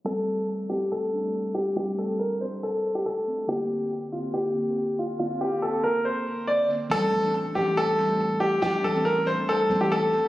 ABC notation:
X:1
M:4/4
L:1/16
Q:1/4=140
K:Aphr
V:1 name="Grand piano"
A4 z2 G2 A6 G2 | G2 A2 B2 c2 A3 G A4 | G4 z2 F2 G6 F2 | F2 G2 A2 B2 c4 d2 z2 |
A4 z2 G2 A6 G2 | G2 A2 B2 c2 A3 G A4 |]
V:2 name="Synth keys"
[G,A,C]4- [G,A,C] z [G,A,C]3 z [G,A,D]4- [G,A,D] z | [G,A,C]2 z [G,A,C]2 z [G,A,C]6 z2 [G,A,C]2 | [D,B,C]4- [D,B,C] z [D,B,C]3 z [D,B,C]4- [D,B,C] z | [D,B,C]2 z [D,B,C]2 z [D,B,C]6 z2 [D,B,C]2 |
[E,G,A,C]2 z [E,G,A,D]2 z [E,G,A,C]3 z [E,G,A,C]4- [E,G,A,C] z | [E,G,A,D]2 z [E,G,A,C]2 z [E,G,A,D]3 z [E,G,A,C]3 z [E,G,A,C]2 |]
V:3 name="808-style bass" clef=bass
z16 | z16 | z16 | z16 |
A,,,2 A,,,4 A,,,8- A,,,2 | A,,,2 A,,,4- A,,, z3 A,,,4 z2 |]